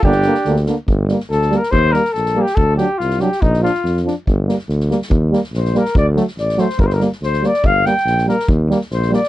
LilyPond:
<<
  \new Staff \with { instrumentName = "Flugelhorn" } { \time 2/4 \key g \minor \tempo 4 = 142 g'4. r8 | r4 \tuplet 3/2 { a'4 bes'8 } | c''8 bes'8 \tuplet 3/2 { a'4 g'8 } | a'8 g'8 f'8 g'8 |
ees'8 f'4 r8 | r2 | r4 c''8 bes'8 | d''8 r8 d''8 c''8 |
bes'32 c''32 bes'16 r8 c''8 d''8 | f''8 g''4 bes'8 | r4 c''8 d''8 | }
  \new Staff \with { instrumentName = "Alto saxophone" } { \time 2/4 \key g \minor d'4. r8 | r2 | r2 | r2 |
r2 | r2 | r2 | r2 |
r2 | r2 | r2 | }
  \new Staff \with { instrumentName = "Trombone" } { \time 2/4 \key g \minor bes8 bes8 bes8 bes8 | r8 bes8 r8 bes8 | r8 bes8 r8 bes8 | r8 d'8 r8 d'8 |
r8 d'8 r8 d'8 | r8 bes8 r8 bes8 | r8 bes8 r8 bes8 | r8 a8 r8 a8 |
r8 bes8 r8 bes8 | r8 bes8 r8 bes8 | r8 bes8 r8 bes8 | }
  \new Staff \with { instrumentName = "Euphonium" } { \clef bass \time 2/4 \key g \minor d8 d8 d8 d8 | r8 g8 r8 g8 | r8 g8 r8 g8 | r8 fis8 r8 fis8 |
r8 f8 r8 f8 | r8 g8 r8 g8 | r8 g8 r8 g8 | r8 fis8 r8 fis8 |
r8 g8 r8 g8 | r8 g8 r8 g8 | r8 g8 r8 g8 | }
  \new Staff \with { instrumentName = "Tuba" } { \clef bass \time 2/4 \key g \minor g,,4 d,4 | g,,4 d,4 | ees,4 bes,,4 | d,4 c,4 |
bes,,4 f,4 | g,,4 d,4 | ees,4 bes,,4 | d,4 a,,4 |
g,,4 d,4 | g,,4 bes,,4 | ees,4 bes,,4 | }
  \new DrumStaff \with { instrumentName = "Drums" } \drummode { \time 2/4 bd16 sn16 sn16 sn16 sn16 sn16 sn8 | bd8 sn16 sn16 sn16 sn16 sn16 sn16 | bd8 sn16 sn16 sn16 sn8 sn16 | bd8 sn8 sn16 sn16 sn16 sn16 |
bd16 sn16 sn16 sn16 sn16 sn16 sn8 | bd8 sn16 sn16 sn16 sn16 sn16 sn16 | bd8 sn16 sn16 sn16 sn16 sn16 sn16 | bd8 sn16 sn16 sn16 sn16 sn16 sn16 |
bd16 sn16 sn16 sn16 sn16 sn16 sn16 sn16 | bd8 sn16 sn16 sn16 sn16 sn16 sn16 | bd8 sn16 sn16 sn16 sn16 sn16 sn16 | }
>>